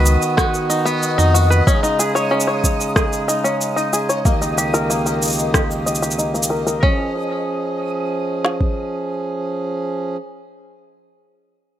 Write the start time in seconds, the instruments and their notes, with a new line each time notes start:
Already playing: sub bass C#2, harmonium D#3 B3 F#4, five-string banjo B4, synth texture D#5 D#6
0.06 cabasa
0.22 cabasa
0.37 five-string banjo F#4, kick, cross-stick, cabasa
0.54 cabasa
0.70 five-string banjo D#4, cabasa
0.85 five-string banjo B3, cabasa
1.03 cabasa
1.18 sub bass F2, five-string banjo D#4, cabasa
1.34 five-string banjo F#4, cabasa
1.50 five-string banjo B4, cabasa
1.67 harmonium C#3 G#3 D#4, five-string banjo C#4, kick, cabasa
1.83 five-string banjo D#4, cabasa
1.99 five-string banjo G#4, cabasa
2.15 five-string banjo C#5, cabasa
2.31 five-string banjo C#4
2.40 cabasa
2.47 five-string banjo C#5
2.64 kick, cabasa
2.81 cabasa
2.96 five-string banjo G#4, kick, cross-stick, cabasa
3.13 cabasa
3.28 five-string banjo D#4, cabasa
3.44 five-string banjo C#4, cabasa
3.61 cabasa
3.76 five-string banjo D#4, cabasa
3.93 five-string banjo G#4, cabasa
4.09 five-string banjo C#5, cabasa
4.25 harmonium C#2 D#3 A#3 G4, five-string banjo A#3, kick, cabasa
4.42 five-string banjo D#4, cabasa
4.58 five-string banjo G4, cabasa
4.74 five-string banjo A#4, cabasa
4.90 five-string banjo A#3, cabasa
5.06 five-string banjo A#4, cabasa
5.22 cabasa
5.25 cabasa
5.27 cabasa
5.30 cabasa
5.32 cabasa
5.34 cabasa
5.37 cabasa
5.39 cabasa
5.54 five-string banjo G4, kick, cross-stick, cabasa
5.71 cabasa
5.86 five-string banjo D#5, cabasa
5.95 cabasa
6.02 five-string banjo G4, cabasa
6.11 cabasa
6.18 five-string banjo D#4, cabasa
6.34 five-string banjo A#3, cabasa
6.43 cabasa
6.50 five-string banjo A#4
6.67 five-string banjo A#4, cabasa
6.83 harmonium F3 C#4 G#4, five-string banjo C#4, kick
8.45 snare
8.61 kick